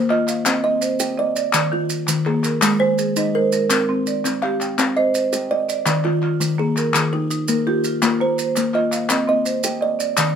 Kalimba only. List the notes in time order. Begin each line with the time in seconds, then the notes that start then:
Already playing: A#3
0.10 D#5
0.46 C4
0.64 D#5
1.00 G4
1.19 D5
1.54 D#3
1.73 F4
2.08 D#3
2.26 G#4
2.62 G#3
2.80 C5
3.17 D#4
3.35 A#4
3.71 C4
4.25 C4
4.42 F5
4.78 C4
4.97 D#5
5.33 G4
5.51 D5
5.86 D#3
6.05 F4
6.40 D#3
6.59 G#4
6.95 D#3
7.13 G4
7.49 A#3
7.67 F4
8.02 A#3
8.21 C5
8.57 A#3
8.75 D#5
9.11 C4
9.29 D#5
9.65 G4
9.82 D5
10.18 D#3